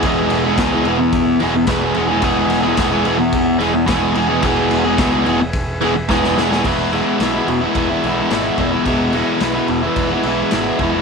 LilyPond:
<<
  \new Staff \with { instrumentName = "Transistor combo organ" } { \time 4/4 \key e \major \tempo 4 = 109 <gis' b' e''>1 | <gis' b' e''>1~ | <gis' b' e''>1 | <gis' b' e''>1~ |
<gis' b' e''>1 | }
  \new Staff \with { instrumentName = "Overdriven electric guitar" } { \clef bass \time 4/4 \key e \major <e, b, e gis b gis'>8. <e gis b gis'>16 <e, b, e gis b gis'>16 <e gis b gis'>16 <e gis b gis'>8. r16 <e gis b gis'>8 <e, b, e gis b gis'>8 <e gis b gis'>16 <e gis b gis'>16 | <e, b, e gis b gis'>8. <e gis b gis'>16 <e, b, e gis b gis'>16 <e gis b gis'>16 <e gis b gis'>8. r16 <e gis b gis'>8 <e, b, e gis b gis'>8 <e gis b gis'>16 <e gis b gis'>16 | <e, b, e gis b gis'>8. <e gis b gis'>16 <e, b, e gis b gis'>16 <e gis b gis'>16 <e gis b gis'>8. r16 <e gis b gis'>8 <e, b, e gis b gis'>8 <e gis b gis'>16 <e gis b gis'>16 | <e, b, e gis b e'>8 <e gis b e'>8 <e, b, e gis b e'>16 <e gis b e'>8 <e gis b e'>8 <e gis b e'>16 <e gis b e'>8 <e, b, e gis b e'>8 <e gis b e'>16 <e gis b e'>16 |
<e, b, e gis b e'>8 <e gis b e'>8 <e, b, e gis b e'>16 <e gis b e'>8 <e gis b e'>8 <e gis b e'>16 <e gis b e'>8 <e, b, e gis b e'>8 <e gis b e'>16 <e gis b e'>16 | }
  \new Staff \with { instrumentName = "Picked electric bass" } { \clef bass \time 4/4 \key e \major e,,8 e,,8 cis,8 e,,8 e,,8 e,,8 e,,8 e,,8 | e,,4 e,,8 e,,8 e,,4 e,,4 | e,,8 e,,8 cis,8 e,,8 e,,8 e,,8 e,,8 e,,8 | e,,4 b,,8 e,,8 e,,8 b,,8 gis,,8 e,,8 |
e,,4 b,,8 e,,8 e,,8 b,,8 gis,,8 e,,8 | }
  \new DrumStaff \with { instrumentName = "Drums" } \drummode { \time 4/4 <bd cymr>8 cymr8 <bd cymr sn>8 cymr8 <bd cymr>8 cymr8 <bd cymr sn>8 cymr8 | <bd cymr>8 cymr8 <bd cymr sn>8 cymr8 <bd cymr>8 cymr8 <bd cymr sn>8 cymr8 | <bd cymr>8 cymr8 <bd cymr sn>8 cymr8 <bd cymr>8 cymr8 <bd sn>16 sn16 sn16 sn16 | <cymc bd>8 cymr8 <cymr sn>8 cymr8 <bd cymr>8 cymr8 <cymr sn>8 <bd cymr>8 |
<bd cymr>8 cymr8 <cymr sn>8 cymr8 <bd cymr>8 cymr8 <cymr sn>8 <bd cymr>8 | }
>>